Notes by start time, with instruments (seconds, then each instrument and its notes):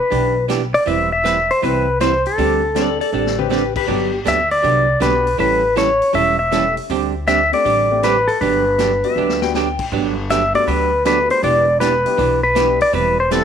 Already playing: pedal steel guitar B4
0.10 upright bass B1, hollow-body jazz guitar E3 B3 D4 G4, upright piano D4 E4 G4 B4, kick, open hi-hat
0.48 hollow-body jazz guitar E3 B3 D4 G4, snare, closed hi-hat
0.74 pedal steel guitar D5, open hi-hat
0.86 upright bass E1, hollow-body jazz guitar E3 G3 C4 E4 B4, pedal steel guitar E5, kick, open hi-hat
1.12 pedal steel guitar E5
1.24 hollow-body jazz guitar E3 G3 C4 E4 B4, snare, closed hi-hat
1.50 pedal steel guitar C5, open hi-hat
1.62 upright bass C2, hollow-body jazz guitar E3 G3 C4 E4 B4, upright piano C4 E4 G4 B4, pedal steel guitar B4, kick, open hi-hat
2.00 hollow-body jazz guitar E3 G3 C4 E4 B4, pedal steel guitar C5, snare, closed hi-hat
2.26 pedal steel guitar A4, open hi-hat
2.38 upright bass D2, hollow-body jazz guitar D3 G3 C4 D4 G4, upright piano C4 D4 G4 A4, kick, open hi-hat
2.75 hollow-body jazz guitar D3 G3 C4 D4 G4, upright piano C4 D4 G4 C5, electric slide guitar A4 D5, snare, closed hi-hat
3.00 electric slide guitar A4 D5, open hi-hat
3.12 upright bass A1, hollow-body jazz guitar D3 G3 C4 D4 G4, electric slide guitar A4 D5
3.27 snare
3.39 upright piano C4 D4 G4 C5, electric slide guitar G4 B4, mid tom
3.50 hollow-body jazz guitar D3 G3 C4 D4 G4, electric slide guitar G4 B4, snare
3.76 electric slide guitar G4 B4, kick, crash
3.87 upright bass G1, hollow-body jazz guitar D3 F#3 B3 D4 G4, upright piano B3 D4 F#4 G4, electric slide guitar G4, kick
4.25 upright bass D2, hollow-body jazz guitar D3 F#3 B3 D4 G4, pedal steel guitar E5, snare, closed hi-hat
4.51 pedal steel guitar D5, open hi-hat
4.62 upright bass C2, hollow-body jazz guitar D3 F#3 B3 D4 G4, kick, open hi-hat
5.00 upright bass B1, hollow-body jazz guitar D3 F#3 B3 D4 G4, upright piano B3 D4 F#4 G4, pedal steel guitar B4, snare, closed hi-hat
5.27 open hi-hat
5.38 upright bass A1, hollow-body jazz guitar E3 G3 C#4 E4 A4, upright piano A3 C#4 E4 G4, pedal steel guitar B4, kick, open hi-hat
5.76 hollow-body jazz guitar E3 G3 C#4 E4 A4, pedal steel guitar C#5, snare, closed hi-hat
6.02 open hi-hat
6.13 upright bass E1, hollow-body jazz guitar E3 G3 C#4 E4 A4, pedal steel guitar E5, kick, open hi-hat
6.39 pedal steel guitar E5
6.51 hollow-body jazz guitar E3 G3 C#4 E4 A4, upright piano A3 C#4 E4 G4, snare, closed hi-hat
6.77 open hi-hat
6.90 upright bass D2, hollow-body jazz guitar D3 G3 C4 D4 G4, kick, open hi-hat
7.27 hollow-body jazz guitar D3 G3 C4 D4 G4, pedal steel guitar E5, snare, closed hi-hat
7.52 upright piano A3 C4 D4 G4, pedal steel guitar D5, open hi-hat
7.64 upright bass A1, hollow-body jazz guitar D3 G3 C4 D4 G4, kick, open hi-hat
7.91 upright piano A3 C4 D4 G4
8.03 hollow-body jazz guitar D3 G3 C4 D4 G4, pedal steel guitar B4, snare, closed hi-hat
8.28 pedal steel guitar A4, open hi-hat
8.41 upright bass G1, hollow-body jazz guitar D3 F#3 B3 D4 G4, pedal steel guitar B4, kick, open hi-hat
8.78 hollow-body jazz guitar D3 F#3 B3 D4 G4, snare, closed hi-hat
9.04 upright piano G3 B3 D4 F#4, electric slide guitar E5, open hi-hat
9.16 upright bass D2, hollow-body jazz guitar D3 F#3 B3 D4 G4
9.29 snare
9.42 upright piano G3 B3 D4 F#4, electric slide guitar G5, snare
9.54 hollow-body jazz guitar D3 F#3 B3 D4 G4, electric slide guitar G5, snare
9.79 kick, crash
9.92 upright bass G1, hollow-body jazz guitar D3 F#3 B3 D4 G4, kick
10.30 hollow-body jazz guitar D3 F#3 B3 D4 G4, pedal steel guitar E5, snare, closed hi-hat
10.54 upright piano G3 A3 B3 D4 F#4, pedal steel guitar D5, open hi-hat
10.67 upright bass D2, hollow-body jazz guitar D3 F#3 B3 D4 G4, pedal steel guitar B4, kick, open hi-hat
11.05 hollow-body jazz guitar D3 F#3 B3 D4 G4, upright piano G3 A3 B3 D4 F#4, pedal steel guitar B4, snare, closed hi-hat
11.30 pedal steel guitar C5, open hi-hat
11.43 upright bass E1, hollow-body jazz guitar E3 B3 D4 G4, pedal steel guitar D5, kick, open hi-hat
11.80 hollow-body jazz guitar E3 B3 D4 G4, pedal steel guitar B4, snare, closed hi-hat
12.05 upright piano G3 B3 D4 E4 G4, open hi-hat
12.17 upright bass B1, hollow-body jazz guitar E3 B3 D4 G4, kick, open hi-hat
12.43 pedal steel guitar B4
12.55 hollow-body jazz guitar E3 B3 D4 G4, upright piano G3 B3 D4 E4 G4, snare, closed hi-hat
12.81 pedal steel guitar D5, open hi-hat
12.93 upright bass E1, hollow-body jazz guitar E3 G3 C4 E4 B4, pedal steel guitar B4, kick, open hi-hat
13.20 pedal steel guitar C5
13.31 hollow-body jazz guitar E3 G3 C4 E4 B4, upright piano G3 B3 C4 E4 G4, pedal steel guitar A4, snare, closed hi-hat